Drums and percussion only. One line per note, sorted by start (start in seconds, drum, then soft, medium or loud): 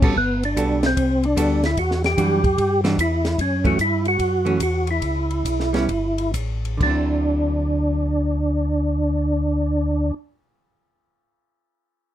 0.02 kick medium
0.02 crash medium
0.16 kick soft
0.43 ride soft
0.57 kick soft
0.57 hi-hat pedal soft
0.57 ride medium
0.83 snare medium
0.83 ride soft
0.97 kick soft
0.97 ride medium
1.23 ride soft
1.37 kick soft
1.37 hi-hat pedal medium
1.37 ride medium
1.63 snare soft
1.63 ride soft
1.77 kick soft
1.77 ride medium
1.91 snare soft
2.04 snare soft
2.04 ride soft
2.18 kick soft
2.18 hi-hat pedal medium
2.18 ride medium
2.44 kick soft
2.44 ride soft
2.58 kick soft
2.58 ride medium
2.85 snare soft
2.85 ride soft
2.98 kick soft
2.98 hi-hat pedal soft
2.98 ride medium
3.25 snare soft
3.25 ride soft
3.38 kick soft
3.38 ride medium
3.65 kick soft
3.65 ride soft
3.79 kick soft
3.79 hi-hat pedal soft
3.79 ride medium
4.05 ride soft
4.19 kick soft
4.19 ride medium
4.46 ride soft
4.60 kick soft
4.60 hi-hat pedal soft
4.60 ride medium
4.87 ride soft
5.02 kick soft
5.02 ride medium
5.30 ride soft
5.45 kick soft
5.45 hi-hat pedal soft
5.45 ride medium
5.60 snare soft
5.74 snare soft
5.74 ride soft
5.89 kick soft
5.89 ride medium
6.18 ride soft
6.34 kick soft
6.34 hi-hat pedal medium
6.34 ride medium
6.65 ride soft
6.81 kick soft
6.81 crash medium